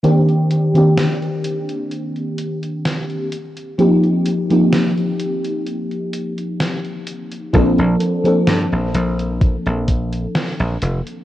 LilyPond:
<<
  \new Staff \with { instrumentName = "FM electric piano" } { \time 4/4 \key c \dorian \tempo 4 = 64 <ees bes c' d' g'>8. <ees bes c' d' g'>2~ <ees bes c' d' g'>8. r8 | <f bes c' ees' g'>8 r16 <f bes c' ees' g'>16 r2. | <f bes c' d' a'>8. <f bes c' d' a'>2.~ <f bes c' d' a'>16 | }
  \new Staff \with { instrumentName = "Slap bass" } { \clef bass \time 4/4 \key c \dorian r1 | r1 | bes,,16 bes,,16 r8 g,16 bes,,16 bes,,8. bes,,8. r16 bes,,16 f,,16 r16 | }
  \new DrumStaff \with { instrumentName = "Drums" } \drummode { \time 4/4 hh16 hh16 hh16 hh16 <hh sn>16 hh16 hh16 hh16 hh16 hh16 hh16 hh16 <hh sn>16 hh16 hh16 hh16 | hh16 hh16 hh16 hh16 <hh sn>16 hh16 hh16 hh16 hh16 hh16 hh16 hh16 <hh sn>16 hh16 hh16 hh16 | <hh bd>16 hh16 hh16 hh16 <hh sn>16 hh16 hh16 hh16 <hh bd>16 hh16 <hh bd>16 hh16 <hh sn>16 hh16 hh16 hh16 | }
>>